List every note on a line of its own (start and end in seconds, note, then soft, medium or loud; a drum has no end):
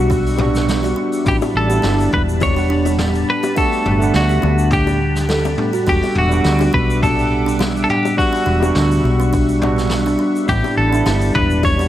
0.00 0.93 B1 loud
0.00 0.35 G3 medium
0.00 10.45 G3 medium
0.00 0.36 B3 medium
0.00 0.36 D4 medium
0.00 0.37 F#4 loud
0.00 0.64 F#4 loud
0.00 1.21 E5 medium
0.00 1.21 F#5 medium
0.00 1.23 C#6 medium
0.10 0.24 D4 loud
0.10 kick loud
0.10 open hi-hat medium
0.10 shaker medium
0.26 open hi-hat medium
0.26 shaker soft
0.36 1.21 G3 medium
0.36 1.22 B3 medium
0.36 1.23 D4 medium
0.36 mid tom medium
0.36 high bongo medium
0.41 1.23 F#4 medium
0.55 snare soft
0.55 open hi-hat soft
0.55 shaker medium
0.68 snare loud
0.68 open hi-hat medium
0.68 shaker medium
0.83 0.95 F#4 medium
0.83 open hi-hat medium
0.83 high bongo medium
0.83 shaker medium
0.96 1.11 D4 loud
1.12 open hi-hat medium
1.12 shaker medium
1.24 1.39 A1 medium
1.24 1.66 G3 medium
1.24 1.66 B3 medium
1.24 1.66 D4 medium
1.24 3.54 D4 medium
1.24 1.67 E4 medium
1.24 5.83 A5 medium
1.24 5.83 B5 medium
1.24 kick loud
1.24 mid tom medium
1.24 open hi-hat medium
1.24 shaker medium
1.28 1.36 G4 medium
1.41 open hi-hat medium
1.41 high bongo medium
1.41 shaker soft
1.55 1.78 A1 medium
1.55 2.09 A4 medium
1.67 2.51 G3 medium
1.67 2.52 B3 medium
1.67 2.53 D4 medium
1.67 1.82 G4 medium
1.67 shaker medium
1.72 2.54 E4 medium
1.82 2.07 G1 medium
1.82 1.97 D4 loud
1.82 snare loud
1.82 open hi-hat medium
1.82 high bongo medium
1.82 shaker medium
1.99 open hi-hat medium
1.99 shaker medium
2.12 3.24 E1 loud
2.12 2.21 B4 loud
2.12 kick loud
2.12 mid tom medium
2.29 shaker medium
2.40 2.96 C#5 loud
2.40 kick loud
2.40 open hi-hat medium
2.40 high bongo medium
2.40 shaker medium
2.54 3.52 G3 medium
2.54 3.52 B3 medium
2.54 3.54 D4 medium
2.54 2.68 G4 medium
2.54 open hi-hat medium
2.54 shaker medium
2.58 3.54 F#5 medium
2.70 2.84 D4 loud
2.85 open hi-hat medium
2.85 high bongo medium
2.85 shaker medium
2.98 snare loud
2.98 mid tom medium
2.98 open hi-hat medium
2.98 shaker medium
3.15 open hi-hat medium
3.15 shaker medium
3.30 3.57 B4 loud
3.42 3.55 G4 medium
3.42 open hi-hat soft
3.42 high bongo medium
3.42 shaker medium
3.55 3.97 A3 medium
3.55 3.97 B3 medium
3.55 3.71 D4 loud
3.55 3.98 D4 medium
3.55 3.98 F#4 loud
3.55 4.15 A4 loud
3.55 10.45 F#5 medium
3.55 kick loud
3.55 open hi-hat medium
3.55 shaker medium
3.72 open hi-hat medium
3.72 shaker medium
3.85 4.09 G1 medium
3.85 mid tom medium
3.85 high bongo medium
3.99 4.96 A3 loud
3.99 4.97 B3 medium
3.99 4.98 D4 medium
3.99 shaker medium
4.04 4.99 F#5 loud
4.14 4.38 D2 medium
4.14 4.73 F#4 medium
4.14 snare medium
4.14 open hi-hat medium
4.14 shaker medium
4.29 4.41 G4 medium
4.29 open hi-hat medium
4.29 shaker medium
4.42 5.54 D2 medium
4.42 4.57 D4 loud
4.42 high bongo medium
4.58 shaker medium
4.71 5.55 G4 medium
4.71 kick loud
4.71 mid tom medium
4.71 open hi-hat medium
4.71 shaker medium
4.87 open hi-hat medium
4.87 high bongo medium
4.87 shaker soft
5.15 snare soft
5.15 open hi-hat soft
5.15 shaker medium
5.29 5.44 A4 loud
5.29 snare loud
5.29 open hi-hat medium
5.29 shaker medium
5.45 open hi-hat medium
5.45 high bongo medium
5.45 shaker medium
5.57 5.69 A3 medium
5.57 5.69 B3 medium
5.57 5.70 D4 medium
5.57 5.70 G4 medium
5.57 mid tom medium
5.73 5.85 F#4 loud
5.73 open hi-hat medium
5.73 shaker medium
5.86 6.00 E1 loud
5.86 6.27 G3 medium
5.86 6.28 B3 medium
5.86 6.01 D4 loud
5.86 6.28 D4 medium
5.86 6.29 F#4 medium
5.86 6.18 G4 medium
5.86 10.45 E5 medium
5.86 8.16 D6 medium
5.86 kick loud
5.86 open hi-hat medium
5.86 shaker medium
6.02 open hi-hat medium
6.02 high bongo medium
6.02 shaker medium
6.15 6.40 E1 medium
6.15 6.74 F#4 medium
6.15 mid tom medium
6.29 7.13 G3 medium
6.29 7.14 B3 medium
6.29 7.15 D4 medium
6.29 shaker medium
6.34 7.15 F#4 medium
6.44 6.69 D2 medium
6.44 snare medium
6.44 open hi-hat medium
6.44 shaker medium
6.59 6.72 D4 loud
6.59 open hi-hat medium
6.59 high bongo medium
6.59 shaker soft
6.73 7.85 B1 medium
6.73 6.87 D4 loud
6.73 7.01 B4 loud
6.73 kick loud
6.90 shaker medium
7.03 7.56 A4 medium
7.03 kick loud
7.03 mid tom medium
7.03 open hi-hat medium
7.03 high bongo medium
7.03 shaker medium
7.16 8.13 G3 medium
7.16 8.14 B3 medium
7.16 8.15 D4 medium
7.16 open hi-hat medium
7.16 shaker medium
7.20 8.16 G4 medium
7.46 7.58 D4 loud
7.46 open hi-hat soft
7.46 shaker medium
7.59 7.74 D4 loud
7.59 snare medium
7.59 open hi-hat medium
7.59 high bongo medium
7.59 shaker medium
7.77 open hi-hat medium
7.77 shaker medium
7.84 7.90 A4 medium
7.90 8.16 G4 loud
7.90 mid tom medium
8.05 open hi-hat soft
8.05 high bongo medium
8.05 shaker medium
8.17 8.58 G3 medium
8.17 8.59 B3 medium
8.17 8.59 D4 medium
8.17 9.87 F#4 loud
8.17 8.59 F#4 loud
8.17 10.46 C#6 medium
8.17 kick loud
8.17 open hi-hat medium
8.17 shaker medium
8.33 8.45 D4 loud
8.33 open hi-hat medium
8.33 shaker soft
8.46 8.71 E1 medium
8.46 8.60 D4 loud
8.60 9.58 G3 medium
8.60 9.59 B3 medium
8.60 9.59 D4 medium
8.60 high bongo medium
8.60 shaker medium
8.65 9.60 F#4 loud
8.75 8.99 D2 medium
8.75 snare loud
8.75 mid tom medium
8.75 open hi-hat medium
8.75 shaker medium
8.91 open hi-hat medium
8.91 shaker medium
9.04 10.15 B1 loud
9.04 high bongo soft
9.20 9.32 D4 loud
9.20 shaker medium
9.33 9.47 D4 loud
9.33 kick loud
9.33 open hi-hat medium
9.33 shaker medium
9.48 open hi-hat medium
9.48 shaker soft
9.59 10.44 G3 medium
9.59 10.45 B3 medium
9.59 10.46 D4 medium
9.59 mid tom medium
9.63 10.46 F#4 loud
9.63 high bongo medium
9.78 snare soft
9.78 open hi-hat medium
9.78 shaker medium
9.89 snare medium
9.89 open hi-hat medium
9.89 shaker medium
10.06 10.18 D4 loud
10.06 open hi-hat medium
10.06 high bongo soft
10.06 shaker soft
10.19 10.33 D4 loud
10.35 open hi-hat soft
10.35 shaker medium
10.46 10.61 A1 loud
10.46 10.88 G3 medium
10.46 11.88 G3 medium
10.46 10.89 B3 medium
10.46 10.89 D4 medium
10.46 11.88 D4 medium
10.46 10.90 E4 medium
10.46 10.77 G4 medium
10.46 11.88 A5 medium
10.46 11.88 B5 loud
10.46 kick loud
10.46 mid tom medium
10.46 open hi-hat medium
10.46 shaker medium
10.64 open hi-hat medium
10.64 high bongo medium
10.64 shaker soft
10.77 11.01 A1 medium
10.77 11.35 A4 medium
10.90 11.74 G3 medium
10.90 11.75 B3 medium
10.90 11.05 D4 loud
10.90 11.76 D4 medium
10.94 11.76 E4 loud
10.94 shaker medium
11.06 11.30 G1 loud
11.06 11.20 D4 loud
11.06 snare loud
11.06 open hi-hat medium
11.06 high bongo soft
11.06 shaker medium
11.21 open hi-hat medium
11.21 shaker medium
11.35 11.88 E1 loud
11.35 11.64 B4 loud
11.35 kick loud
11.35 mid tom medium
11.50 shaker medium
11.63 11.88 C#5 loud
11.63 kick loud
11.63 open hi-hat medium
11.63 high bongo medium
11.63 shaker medium
11.77 11.88 G3 medium
11.77 11.88 B3 medium
11.77 11.88 D4 loud
11.77 11.88 D4 medium
11.77 open hi-hat medium
11.77 shaker soft
11.82 11.88 F#4 medium